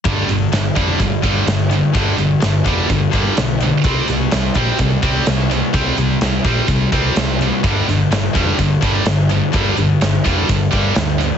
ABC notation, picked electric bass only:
X:1
M:4/4
L:1/8
Q:1/4=126
K:Cdor
V:1 name="Picked electric bass" clef=bass
G,,, G,,, G,,, F,,, G,,, G,,, G,,,2 | G,,, G,,, G,,, F,,, G,,, G,,, =B,,,2 | C,, C,, C,, B,,, C,, C,, C,,2 | C,, C,, C,, B,,, C,, C,, C,,2 |
G,,, G,,, G,,, F,,, G,,, G,,, G,,,2 | G,,, G,,, G,,, F,,, G,,, G,,, D,,2 |]